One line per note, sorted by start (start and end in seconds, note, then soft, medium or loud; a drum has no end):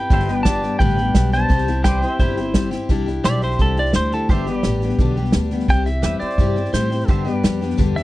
0.00 0.11 C4 soft
0.00 0.11 E4 soft
0.00 0.10 G4 medium
0.00 0.42 B4 medium
0.00 0.43 G5 loud
0.10 0.63 G1 medium
0.10 0.28 G2 medium
0.10 0.28 D3 medium
0.10 0.28 G3 medium
0.10 0.28 B3 medium
0.10 0.28 D4 medium
0.10 0.27 G4 medium
0.10 1.50 G4 medium
0.10 0.34 C5 medium
0.10 0.39 E5 medium
0.10 kick loud
0.10 snare soft
0.20 snare soft
0.28 0.43 G3 soft
0.28 0.45 B3 soft
0.28 0.45 D4 soft
0.28 0.46 G4 medium
0.28 snare soft
0.34 1.50 B4 medium
0.39 1.50 D5 medium
0.43 0.62 G3 medium
0.43 0.63 B3 medium
0.43 0.63 D4 medium
0.43 0.78 D5 medium
0.43 0.79 A5 medium
0.43 kick medium
0.43 snare loud
0.43 hi-hat pedal medium
0.47 0.61 G4 medium
0.63 0.80 G3 soft
0.63 0.80 B3 soft
0.63 0.80 D4 medium
0.63 0.80 G4 soft
0.63 snare soft
0.79 1.10 A1 medium
0.79 0.98 G2 medium
0.79 0.98 D3 medium
0.79 0.98 G3 medium
0.79 0.97 B3 loud
0.79 0.97 D4 medium
0.79 0.96 G4 medium
0.79 1.29 B4 medium
0.79 1.33 G5 loud
0.79 kick medium
0.79 snare soft
0.89 snare soft
0.97 1.14 G3 soft
0.97 1.15 B3 soft
0.97 1.15 D4 soft
0.97 1.15 G4 soft
0.97 snare soft
1.15 1.45 B1 medium
1.15 1.33 G3 medium
1.15 1.32 B3 medium
1.15 1.32 D4 medium
1.15 1.31 G4 medium
1.15 kick medium
1.15 snare loud
1.15 hi-hat pedal medium
1.32 1.48 G3 soft
1.32 1.49 B3 soft
1.32 1.49 D4 medium
1.32 1.49 G4 medium
1.32 1.82 C5 medium
1.32 1.82 A5 loud
1.32 snare soft
1.49 2.02 C2 medium
1.49 1.67 C3 medium
1.49 1.67 G3 medium
1.49 1.67 C4 medium
1.49 1.67 E4 medium
1.49 1.66 G4 medium
1.49 kick loud
1.49 snare soft
1.58 snare soft
1.67 1.84 C4 soft
1.67 1.84 E4 soft
1.67 1.85 G4 soft
1.67 snare soft
1.84 2.02 G3 medium
1.84 2.02 C4 medium
1.84 2.02 E4 medium
1.84 2.88 G4 medium
1.84 2.01 G4 medium
1.84 2.05 B4 medium
1.84 2.18 C5 medium
1.84 2.12 D5 medium
1.84 2.21 G5 medium
1.84 kick medium
1.84 snare loud
1.84 hi-hat pedal medium
2.02 2.19 C4 soft
2.02 2.20 E4 medium
2.02 2.20 G4 medium
2.02 2.89 C5 medium
2.02 snare soft
2.12 2.90 E5 medium
2.19 2.72 G1 medium
2.19 2.37 C3 medium
2.19 2.38 G3 medium
2.19 2.38 C4 medium
2.19 2.37 E4 medium
2.19 2.69 E4 medium
2.19 2.36 G4 medium
2.19 2.69 C5 medium
2.19 kick loud
2.19 snare soft
2.36 2.54 C4 soft
2.36 2.54 E4 soft
2.36 2.55 G4 medium
2.36 snare soft
2.54 2.72 G3 medium
2.54 2.73 C4 medium
2.54 2.72 E4 medium
2.54 2.70 G4 medium
2.54 kick medium
2.54 snare medium
2.54 hi-hat pedal medium
2.71 2.90 C4 soft
2.71 2.89 E4 medium
2.71 2.89 G4 medium
2.71 snare medium
2.89 3.23 C2 medium
2.89 3.07 C3 medium
2.89 3.07 G3 medium
2.89 3.07 D4 medium
2.89 3.06 E4 medium
2.89 3.05 G4 medium
2.89 kick loud
2.89 snare soft
3.06 3.23 D4 soft
3.06 3.24 E4 medium
3.06 3.24 G4 medium
3.06 snare soft
3.23 3.59 B1 medium
3.23 3.42 G3 medium
3.23 3.42 D4 medium
3.23 3.42 E4 medium
3.23 4.29 G4 medium
3.23 3.41 G4 medium
3.23 4.29 C5 medium
3.23 3.42 D5 medium
3.23 4.30 E5 medium
3.23 snare loud
3.23 hi-hat pedal medium
3.42 3.59 D4 soft
3.42 3.59 E4 soft
3.42 3.59 G4 medium
3.42 3.60 C5 medium
3.42 snare soft
3.51 snare soft
3.59 3.93 C2 medium
3.59 3.77 C3 medium
3.59 3.77 G3 medium
3.59 3.77 D4 medium
3.59 3.77 E4 medium
3.59 3.76 G4 medium
3.59 3.78 A4 medium
3.59 kick loud
3.59 snare soft
3.76 3.94 D4 soft
3.76 3.95 E4 soft
3.76 3.94 G4 soft
3.76 3.95 D5 medium
3.76 snare soft
3.85 snare soft
3.93 4.28 D2 medium
3.93 4.12 G3 medium
3.93 4.12 D4 medium
3.93 4.13 E4 medium
3.93 4.11 G4 medium
3.93 4.12 C5 medium
3.93 snare medium
3.93 hi-hat pedal medium
4.11 4.30 D4 soft
4.11 4.31 E4 medium
4.11 4.30 G4 medium
4.11 4.30 A4 medium
4.11 snare soft
4.29 4.63 G1 medium
4.29 4.48 G2 medium
4.29 4.48 D3 medium
4.29 4.48 G3 medium
4.29 4.47 B3 medium
4.29 4.47 D4 medium
4.29 5.68 G4 medium
4.29 5.32 G4 medium
4.29 4.45 G4 medium
4.29 4.51 C5 medium
4.29 kick loud
4.29 snare soft
4.33 4.58 E5 medium
4.46 4.63 G3 soft
4.46 4.63 B3 soft
4.46 4.64 D4 soft
4.46 4.64 G4 soft
4.46 snare soft
4.51 5.68 B4 medium
4.58 5.70 D5 medium
4.63 4.98 A1 medium
4.63 4.82 G3 medium
4.63 4.82 B3 medium
4.63 4.83 D4 medium
4.63 4.82 G4 medium
4.63 snare loud
4.63 hi-hat pedal medium
4.81 5.00 G3 soft
4.81 5.00 B3 soft
4.81 5.00 D4 soft
4.81 5.00 G4 medium
4.81 snare soft
4.89 snare soft
4.98 5.33 B1 medium
4.98 5.17 G2 medium
4.98 5.17 D3 medium
4.98 5.18 G3 medium
4.98 5.18 B3 loud
4.98 5.17 D4 medium
4.98 5.16 G4 medium
4.98 kick loud
4.98 snare soft
5.16 5.33 G3 soft
5.16 5.34 B3 medium
5.16 5.35 D4 medium
5.16 5.35 G4 medium
5.16 snare soft
5.25 snare soft
5.32 5.68 D2 medium
5.32 5.52 G3 medium
5.32 5.51 B3 medium
5.32 5.51 D4 medium
5.32 snare medium
5.32 hi-hat pedal medium
5.37 5.50 G4 medium
5.50 5.68 G3 soft
5.50 5.69 B3 medium
5.50 5.69 D4 medium
5.50 5.69 G4 medium
5.50 snare soft
5.59 snare soft
5.68 6.03 C2 medium
5.68 5.87 C3 medium
5.68 5.87 G3 medium
5.68 5.87 C4 medium
5.68 5.85 E4 medium
5.68 5.84 G4 medium
5.68 5.87 G5 medium
5.68 kick loud
5.68 snare soft
5.86 6.02 C4 soft
5.86 6.02 E4 soft
5.86 6.03 G4 medium
5.86 6.19 E5 loud
5.86 snare soft
6.02 6.21 E2 loud
6.02 6.21 G3 medium
6.02 6.21 C4 medium
6.02 6.20 E4 medium
6.02 6.19 G4 medium
6.02 7.08 G4 medium
6.02 6.25 B4 medium
6.02 7.09 E5 medium
6.02 snare loud
6.02 hi-hat pedal medium
6.20 6.39 C4 soft
6.20 6.39 E4 soft
6.20 6.38 G4 medium
6.20 6.71 D5 medium
6.20 muted upright bass stroke soft
6.20 snare soft
6.25 7.09 C5 medium
6.30 snare soft
6.38 6.73 G2 medium
6.38 6.57 C3 medium
6.38 6.57 G3 medium
6.38 6.57 C4 medium
6.38 6.56 E4 medium
6.38 6.55 G4 medium
6.38 kick medium
6.38 snare soft
6.56 6.72 C4 soft
6.56 6.73 E4 soft
6.56 6.74 G4 medium
6.56 snare soft
6.65 snare soft
6.73 7.08 A2 medium
6.73 6.91 G3 medium
6.73 6.91 C4 medium
6.73 6.90 E4 medium
6.73 6.89 G4 medium
6.73 7.08 C5 medium
6.73 snare loud
6.73 hi-hat pedal medium
6.90 7.08 C4 soft
6.90 7.09 E4 soft
6.90 7.08 G4 medium
6.90 snare soft
7.00 snare soft
7.08 7.26 G2 medium
7.08 7.43 G2 medium
7.08 7.26 D3 medium
7.08 7.25 G3 medium
7.08 7.25 B3 medium
7.08 7.24 D4 medium
7.08 8.03 G4 medium
7.08 7.23 G4 medium
7.08 7.30 C5 medium
7.08 7.36 E5 medium
7.08 kick loud
7.08 snare soft
7.25 7.42 G3 soft
7.25 7.43 B3 soft
7.25 7.43 D4 medium
7.25 7.43 G4 medium
7.25 snare soft
7.30 8.03 B4 medium
7.36 8.03 D5 medium
7.43 7.78 F2 medium
7.43 7.61 G3 medium
7.43 7.61 B3 medium
7.43 7.61 D4 medium
7.43 7.60 G4 medium
7.43 snare loud
7.43 hi-hat pedal medium
7.61 7.77 G3 soft
7.61 7.78 B3 soft
7.61 7.78 D4 medium
7.61 7.78 G4 medium
7.61 snare soft
7.70 snare soft
7.77 8.03 E2 medium
7.77 7.96 G2 medium
7.77 7.96 D3 loud
7.77 7.96 G3 medium
7.77 7.96 B3 medium
7.77 7.96 D4 medium
7.77 7.95 G4 loud
7.77 kick medium
7.77 snare soft
7.96 8.03 G3 soft
7.96 8.03 B3 soft
7.96 8.03 D4 soft
7.96 8.03 G4 medium
7.96 8.03 E5 medium
7.96 snare soft